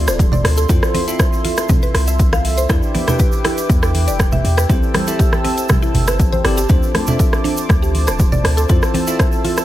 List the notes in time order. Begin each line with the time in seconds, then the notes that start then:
Already playing: C4 D4 F4 A4 D5 E5 C6, impact
0.07 D1 C5, cross-stick, closed hi-hat, shaker
0.19 kick, closed hi-hat, high conga, shaker
0.32 D5, low conga, shaker
0.44 D2, cross-stick, open hi-hat
0.57 A4, closed hi-hat, shaker
0.69 F2 C4 E4 F4 A4 C5 E5, kick, closed hi-hat, shaker
0.83 cross-stick, shaker
0.94 C4, open hi-hat, high conga
1.08 C4 E4 F4 A4 E5, closed hi-hat, shaker
1.19 C5, kick, cross-stick, closed hi-hat, shaker
1.33 shaker
1.45 F4, open hi-hat, high conga
1.57 cross-stick, closed hi-hat, shaker
1.69 C4, kick, closed hi-hat, high conga, low conga, shaker
1.83 B4, shaker
1.94 C2, cross-stick, open hi-hat
2.08 E5, closed hi-hat, shaker
2.19 kick, closed hi-hat, shaker
2.33 F5, cross-stick, high conga, shaker
2.45 open hi-hat
2.58 C5, closed hi-hat, shaker
2.69 E2 D4 E4 G4 B4 D5 G5 D6, kick, cross-stick, closed hi-hat, shaker
2.83 shaker
2.95 B3, open hi-hat, high conga
3.07 D4 E4 G4 B4 G5, cross-stick, closed hi-hat, low conga, shaker
3.19 B4, kick, closed hi-hat, shaker
3.32 shaker
3.44 E4, cross-stick, open hi-hat, high conga
3.58 closed hi-hat, shaker
3.69 E2 B3, kick, closed hi-hat, shaker
3.83 A4, cross-stick, shaker
3.95 open hi-hat, high conga
4.08 E1 D5, closed hi-hat, shaker
4.19 kick, cross-stick, closed hi-hat, high conga, shaker
4.32 E5, low conga, shaker
4.44 E2, open hi-hat
4.57 B4, cross-stick, closed hi-hat, shaker
4.69 C2 C4 E4 G4 A4 C5 A5 E6, kick, closed hi-hat, shaker
4.83 shaker
4.94 G3, cross-stick, open hi-hat, high conga
5.07 C4 E4 G4 A4 E5, closed hi-hat, shaker
5.19 G4, kick, closed hi-hat, shaker
5.32 cross-stick, high conga, shaker
5.44 C4, open hi-hat, high conga
5.58 closed hi-hat, shaker
5.69 G3, kick, cross-stick, closed hi-hat, high conga, low conga, shaker
5.82 E4, shaker
5.94 G1, open hi-hat, low conga
6.07 B4, cross-stick, closed hi-hat, shaker
6.19 A1, kick, closed hi-hat, shaker
6.32 C5, high conga, shaker
6.44 G1 C4 E4 G4 A4 D5, cross-stick, open hi-hat
6.58 G4, closed hi-hat, shaker
6.69 D2 C4 D4 F4 A4 C5 A5 D6, kick, closed hi-hat, shaker
6.83 shaker
6.94 A3, cross-stick, open hi-hat, high conga
7.07 C4 D4 F4 A4 E5, closed hi-hat, low conga, shaker
7.19 A4, kick, closed hi-hat, shaker
7.33 cross-stick, shaker
7.44 D4, open hi-hat, high conga
7.57 closed hi-hat, shaker
7.69 D2 A3, kick, cross-stick, closed hi-hat, shaker
7.82 G4, shaker
7.95 open hi-hat, high conga
8.07 D1 C5, cross-stick, closed hi-hat, shaker
8.19 kick, closed hi-hat, high conga, shaker
8.32 D5, low conga, shaker
8.44 D2, cross-stick, open hi-hat
8.57 A4, closed hi-hat, shaker
8.69 F2 C4 E4 F4 A4 C5 E6, kick, closed hi-hat, shaker
8.83 cross-stick, shaker
8.94 C4, open hi-hat, high conga
9.07 C4 E4 F4 A4 E5, closed hi-hat, shaker
9.19 C5, kick, cross-stick, closed hi-hat, shaker
9.32 shaker
9.44 F4, open hi-hat, high conga
9.57 cross-stick, closed hi-hat, shaker